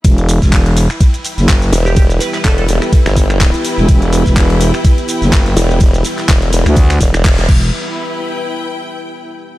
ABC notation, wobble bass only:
X:1
M:4/4
L:1/16
Q:"Swing 16ths" 1/4=125
K:Em
V:1 name="Wobble bass" clef=bass
z12 z2 E,,,2- | E,,,2 z2 E,,,2 E,,, z2 G,,,4 z3 | z12 z2 E,,,2- | E,,,2 z2 E,,,2 E,,, z3 E,,, E,,,3 z2 |
z16 |]